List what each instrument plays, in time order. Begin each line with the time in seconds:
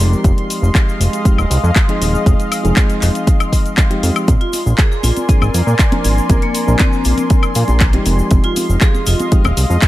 Already playing: reed electric piano F3 G#3 C4 D#4 G4, analog synth pad C6
0.00 analog synth bass F1, analog synth pad G#3 D#5 F5, shaker
0.13 shaker
0.24 analog synth bass F1, kick, closed hi-hat, shaker
0.38 closed hi-hat
0.50 open hi-hat, shaker
0.62 analog synth bass F1, shaker
0.75 kick, clap, closed hi-hat, shaker
0.89 shaker
1.00 analog synth bass F1, open hi-hat, shaker
1.13 closed hi-hat, shaker
1.25 analog synth bass D#1, reed electric piano F3 G#3 C4 D#4 G4, kick, closed hi-hat, shaker
1.38 analog synth bass D#1, high woodblock, shaker
1.50 analog synth bass C2, open hi-hat, shaker
1.64 analog synth bass F2, shaker
1.76 kick, clap, closed hi-hat, shaker
1.88 reed electric piano F3 G#3 C4 D#4 G#4, closed hi-hat
2.01 analog synth bass D#1, open hi-hat, shaker
2.15 shaker
2.26 analog synth bass F1, kick, closed hi-hat, shaker
2.40 closed hi-hat, shaker
2.52 open hi-hat, high woodblock, shaker
2.63 analog synth bass F1, reed electric piano F3 G#3 C4 D#4 G#4, closed hi-hat, shaker
2.76 kick, clap, closed hi-hat, shaker
2.90 closed hi-hat, shaker
3.02 analog synth bass F1, clap, open hi-hat, shaker
3.15 closed hi-hat, shaker
3.27 kick, closed hi-hat, shaker
3.40 closed hi-hat, high woodblock, shaker
3.52 kick, open hi-hat, shaker
3.66 closed hi-hat, shaker
3.77 kick, clap, closed hi-hat, shaker
3.90 reed electric piano F3 G#3 C4 D#4 G4, closed hi-hat
4.03 analog synth bass F2, open hi-hat, shaker
4.16 closed hi-hat, high woodblock, shaker
4.28 analog synth bass A#1, analog synth pad A#4 D5 G#5 C6, kick, closed hi-hat, high conga, shaker
4.41 vibraphone F4, closed hi-hat
4.53 open hi-hat, muted conga, shaker
4.66 analog synth bass A#1, shaker
4.78 vibraphone G#4, kick, clap, closed hi-hat, shaker
4.92 vibraphone G#4, shaker
5.03 analog synth bass A#1, vibraphone F4, open hi-hat, muted conga, shaker
5.16 closed hi-hat, high conga, shaker
5.28 analog synth bass G#1, reed electric piano F3 A#3 C4 D4 G#4, vibraphone C4, kick, closed hi-hat, shaker
5.42 analog synth bass G#1, vibraphone C4, muted conga, high woodblock, shaker
5.54 analog synth bass F2, open hi-hat, shaker
5.67 analog synth bass A#2, shaker
5.79 kick, clap, closed hi-hat, shaker
5.91 reed electric piano F3 A#3 C4 D4 A#4, closed hi-hat, muted conga, high conga
6.04 analog synth bass G#1, open hi-hat, shaker
6.18 shaker
6.29 analog synth bass A#1, kick, closed hi-hat, muted conga, high conga, shaker
6.42 vibraphone A#3, closed hi-hat
6.55 open hi-hat, shaker
6.67 analog synth bass A#1, reed electric piano F3 A#3 C4 D4 A#4, shaker
6.79 vibraphone C4, kick, clap, closed hi-hat, muted conga, shaker
6.93 shaker
7.05 analog synth bass A#1, open hi-hat, shaker
7.17 closed hi-hat, muted conga, high conga, shaker
7.30 kick, closed hi-hat, shaker
7.43 high woodblock, shaker
7.55 analog synth bass A#2, open hi-hat, shaker
7.68 analog synth bass A#1, muted conga, shaker
7.80 kick, clap, closed hi-hat, shaker
7.93 reed electric piano F3 G#3 C4 D#4 G4, closed hi-hat, high conga
8.06 analog synth bass F1, analog synth pad G#3 D#5 F5, open hi-hat, muted conga, shaker
8.19 shaker
8.31 analog synth bass F1, kick, closed hi-hat, high conga, shaker
8.44 vibraphone F4, closed hi-hat
8.56 open hi-hat, muted conga, shaker
8.69 analog synth bass F1, shaker
8.81 vibraphone G#4, kick, clap, closed hi-hat, shaker
8.94 vibraphone G#4, muted conga, shaker
9.06 analog synth bass F1, vibraphone F4, open hi-hat, shaker
9.19 closed hi-hat, high conga, shaker
9.31 analog synth bass D#1, reed electric piano F3 G#3 C4 D#4 G4, kick, closed hi-hat, shaker
9.45 analog synth bass D#1, muted conga, high woodblock, shaker
9.57 analog synth bass C2, open hi-hat, shaker
9.70 analog synth bass F2, shaker
9.82 kick, clap, closed hi-hat, muted conga, shaker